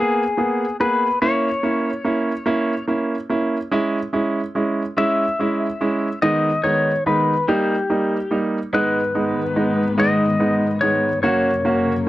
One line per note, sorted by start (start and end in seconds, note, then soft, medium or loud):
0.00 0.22 A#3 medium
0.00 0.22 B3 medium
0.00 0.23 G#4 medium
0.00 0.76 G#4 medium
0.37 0.64 A#3 soft
0.37 0.64 B3 medium
0.37 0.64 G#4 medium
0.80 1.06 A#3 medium
0.80 1.06 B3 soft
0.80 1.06 G#4 medium
0.80 1.19 B4 medium
1.22 1.48 A#3 medium
1.22 1.48 C#4 medium
1.22 1.48 E4 medium
1.22 2.85 C#5 medium
1.63 1.89 A#3 medium
1.63 1.90 C#4 soft
1.63 1.90 E4 medium
2.05 2.31 A#3 medium
2.05 2.31 C#4 soft
2.05 2.31 E4 medium
2.46 2.72 A#3 medium
2.46 2.73 C#4 medium
2.46 2.73 E4 medium
2.88 3.14 A#3 medium
2.88 3.15 C#4 medium
2.88 3.15 E4 medium
3.30 3.56 A#3 medium
3.30 3.56 C#4 soft
3.30 3.56 E4 medium
3.71 3.98 G#3 medium
3.71 3.98 C#4 medium
3.71 3.98 E4 medium
4.13 4.39 G#3 medium
4.13 4.40 C#4 medium
4.13 4.40 E4 medium
4.55 4.81 G#3 medium
4.55 4.82 C#4 soft
4.55 4.82 E4 medium
4.97 5.23 G#3 medium
4.97 5.23 C#4 medium
4.97 5.24 E4 medium
4.97 6.22 E5 medium
5.39 5.65 G#3 medium
5.39 5.66 C#4 soft
5.39 5.66 E4 medium
5.81 6.07 G#3 medium
5.81 6.07 C#4 soft
5.81 6.07 E4 medium
6.22 6.49 D#3 medium
6.22 6.49 G#3 medium
6.22 6.49 B3 medium
6.22 6.49 D#4 medium
6.22 6.66 D#5 medium
6.64 6.90 D#3 medium
6.64 6.90 G#3 soft
6.64 6.90 B3 medium
6.64 6.90 D#4 medium
6.64 7.06 C#5 medium
7.06 7.32 D#3 medium
7.06 7.32 G#3 soft
7.06 7.33 B3 soft
7.06 7.32 D#4 medium
7.06 7.50 B4 medium
7.48 7.74 G3 medium
7.48 7.74 A#3 medium
7.48 7.74 D#4 medium
7.48 8.38 G4 medium
7.90 8.16 G3 medium
7.90 8.16 A#3 soft
7.90 8.16 D#4 medium
8.31 8.57 G3 soft
8.31 8.57 A#3 soft
8.31 8.58 D#4 medium
8.73 11.22 G#2 medium
8.73 11.21 D#3 soft
8.73 8.99 G#3 medium
8.73 8.99 B3 medium
8.73 11.22 B3 medium
8.73 8.99 D#4 medium
8.73 10.03 B4 medium
9.15 9.41 G#3 medium
9.15 9.41 B3 soft
9.15 9.41 D#4 medium
9.56 9.83 G#3 medium
9.56 9.83 B3 medium
9.56 9.83 D#4 medium
9.98 10.24 G#3 medium
9.98 10.24 B3 medium
9.98 10.24 D#4 medium
9.98 10.85 D#5 medium
10.40 10.66 G#3 medium
10.40 10.66 B3 soft
10.40 10.66 D#4 medium
10.81 11.08 G#3 soft
10.81 11.08 B3 soft
10.81 11.08 D#4 medium
10.81 11.20 C#5 medium
11.23 12.09 F#2 soft
11.23 12.09 C#3 soft
11.23 11.50 A#3 medium
11.23 12.09 A#3 medium
11.23 11.50 C#4 medium
11.23 11.50 F#4 medium
11.23 12.09 C#5 medium
11.65 11.91 A#3 medium
11.65 11.92 C#4 medium
11.65 11.92 F#4 medium